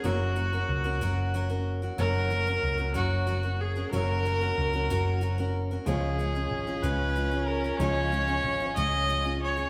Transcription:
<<
  \new Staff \with { instrumentName = "Viola" } { \time 6/8 \key fis \major \tempo 4. = 62 fis'2~ fis'8 r8 | ais'4. fis'4 gis'8 | ais'2~ ais'8 r8 | gis'4. b'4 ais'8 |
cis''4. dis''4 cis''8 | }
  \new Staff \with { instrumentName = "Steel-string acoustic guitar" } { \time 6/8 \key fis \major <fis cis' fis' ais'>8 <fis cis' fis' ais'>16 <cis' fis' ais'>8 <cis' fis' ais'>16 <fis cis' fis' ais'>8 <fis cis' fis' ais'>16 <cis' fis' ais'>8 <cis' fis' ais'>16 | <fis cis' fis' ais'>8 <fis cis' fis' ais'>16 <cis' fis' ais'>8 <cis' fis' ais'>16 <fis cis' fis' ais'>8 <fis cis' fis' ais'>16 <cis' fis' ais'>8 <cis' fis' ais'>16 | <fis cis' fis' ais'>8 <fis cis' fis' ais'>16 <cis' fis' ais'>8 <cis' fis' ais'>16 <fis cis' fis' ais'>8 <fis cis' fis' ais'>16 <cis' fis' ais'>8 <cis' fis' ais'>16 | <cis gis cis' eis' gis'>8 <gis cis' eis' gis'>16 <cis' eis' gis'>8 <cis' eis' gis'>16 <cis gis cis' eis' gis'>8 <gis cis' eis' gis'>16 <cis' eis' gis'>8 <cis' eis' gis'>16 |
<cis gis cis' eis' gis'>8 <gis cis' eis' gis'>16 <cis' eis' gis'>8 <cis' eis' gis'>16 <cis gis cis' eis' gis'>8 <gis cis' eis' gis'>16 <cis' eis' gis'>8 <cis' eis' gis'>16 | }
  \new Staff \with { instrumentName = "Fiddle" } { \time 6/8 \key fis \major r2. | r2. | r2. | cis'2.~ |
cis'2. | }
  \new Staff \with { instrumentName = "Upright piano" } { \time 6/8 \key fis \major <fis,, fis, fis ais cis' ais' cis''>2. | <fis,, fis, fis ais cis' ais' cis''>2. | <fis,, fis, fis ais cis' ais' cis''>2. | <cis, cis eis gis cis' gis' cis''>2. |
<cis, cis eis gis cis' gis' cis''>2. | }
  \new Staff \with { instrumentName = "Picked electric bass" } { \clef bass \time 6/8 \key fis \major fis,,4 cis,8 fis,,4. | fis,,4 cis,8 fis,,4. | fis,,4 cis,8 fis,,4. | cis,4 gis,,8 cis,4. |
cis,4 gis,,8 cis,4. | }
>>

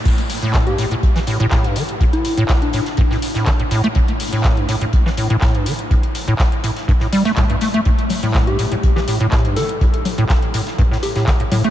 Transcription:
<<
  \new Staff \with { instrumentName = "Soft synth lead" } { \time 4/4 \key c \major \tempo 4 = 123 r4 r16 g'8 r2 r16 | r16 e'4 d'4 r4. r16 | r1 | r1 |
r4 r16 g'8 r8 g'16 g'16 r8. a'8 | r2 r8 g'16 g'16 r4 | }
  \new Staff \with { instrumentName = "Acid bass" } { \clef bass \time 4/4 \key c \major a,16 r8 a,8 g,16 a,16 a,16 r16 e16 a,16 a,16 a,16 g,16 e16 r16 | a,16 r8 a,16 r8 a,16 r16 g,16 a,16 r16 a,16 d16 a,16 a,16 a16 | a,16 r8 a,8 g,16 a,16 a,16 r16 e16 a,16 a,16 a,16 g,16 e16 r16 | a,16 r8 a,16 r8 a,16 r16 g,16 a,16 g16 a16 a,16 g,16 a16 a16 |
a,16 r8 a,8 g,16 a,16 a,16 r16 e16 a,16 a,16 a,16 g,16 e16 r16 | a,16 r8 a,16 r8 a,16 r16 g,16 a,16 r16 a,16 d16 a,16 a,16 a16 | }
  \new DrumStaff \with { instrumentName = "Drums" } \drummode { \time 4/4 <cymc hh bd>16 hh16 hho16 hh16 <hc hh bd sn>16 hh16 <hh hho>16 hh16 <hh bd>16 sn16 <hh hho>16 hh16 <hc hh bd sn>16 hh16 <hh hho>16 hh16 | <hh bd>16 hh16 <hh hho>16 hh16 <hc hh bd sn>16 hh16 <hh hho>16 <hh sn>16 <hh bd>16 sn16 <hh hho>16 <hh sn>16 <hc hh bd sn>16 hh16 <hh hho>16 hh16 | <hh bd>16 hh16 hho16 hh16 <hc hh bd sn>16 hh16 <hh hho>16 hh16 <hh bd>16 sn16 <hh hho>16 hh16 <hc hh bd sn>16 hh16 <hh hho>16 hh16 | <hh bd>16 hh16 <hh hho>16 hh16 <hc hh bd sn>16 hh16 <hh hho>16 <hh sn>16 <hh bd>16 sn16 <hh hho>16 <hh sn>16 <hc hh bd sn>16 hh16 <hh hho>16 hh16 |
<hh bd>16 hh16 <cgl hho>16 hh16 <hc hh bd sn>16 hh16 <hh hho>16 hh16 <hh bd>16 sn16 <hh hho>16 hh16 <hc hh bd sn>16 hh16 <hh hho>16 hh16 | <hh bd>16 hh16 <cgl hh hho>16 hh16 <hc hh bd sn>16 hh16 <hh hho>16 <hh sn>16 <hh bd>16 sn16 <hh hho>16 <hh sn>16 <hc hh bd sn>16 hh16 <cgl hh hho>16 hh16 | }
>>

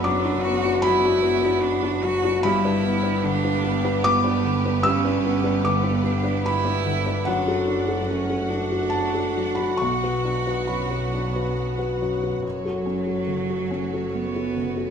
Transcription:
<<
  \new Staff \with { instrumentName = "Felt piano" } { \time 3/4 \key b \minor \tempo 4 = 74 << { d'''4 b''2 | b''2 d'''4 | e'''4 d'''4 b''4 | fis''2 a''8. b''16 |
cis'''4 b''4 r4 | r2. | } \\ { fis,16 <d' fis'>16 b16 <d' fis'>16 fis16 <d' fis'>16 b16 <d' fis'>8 <d' fis'>16 fis16 <d' fis'>16 | g,16 <d' b'>16 b16 <d' b'>16 d16 <d' b'>16 b16 <d' b'>8 <d' b'>16 d16 <d' b'>16 | g,16 <d' b'>16 b16 <d' b'>16 d16 <d' b'>16 b16 <d' b'>8 <d' b'>16 d16 <d' b'>16 | fis,16 <fis' a'>16 d'16 <fis' a'>16 fis16 <fis' a'>16 d'16 <fis' a'>8 <fis' a'>16 fis16 <fis' a'>16 |
b,,16 <fis' b'>16 d'16 <fis' b'>16 fis,16 fis'16 d'16 <fis' b'>8 <fis' b'>16 fis,16 <fis' b'>16 | fis,16 <fis' a'>16 cis'16 <fis' a'>16 cis16 <fis' a'>16 cis'16 <fis' a'>8 <fis' a'>16 cis16 <fis' a'>16 | } >> }
  \new Staff \with { instrumentName = "String section" } { \time 3/4 \key b \minor << { <fis' b'>2. | <g' b'>2.~ | <g' b'>2. | <fis' fis''>2.~ |
<fis' fis''>2. | <fis' cis''>2. | } \\ { b2. | b2.~ | b2. | a2. |
b2. | a2. | } >> }
  \new Staff \with { instrumentName = "Cello" } { \time 3/4 \key b \minor d'8 fis'8 e'4 d'8 fis'8 | e'4 d'4 b4 | cis'4 b8 d'8 e'4 | d'4 cis'8 d'4. |
fis'2~ fis'8 r8 | fis2 b4 | }
  \new Staff \with { instrumentName = "Double bass" } { \clef bass \time 3/4 \key b \minor fis,,2. | g,,2.~ | g,,2. | fis,,2. |
b,,2. | fis,,2. | }
>>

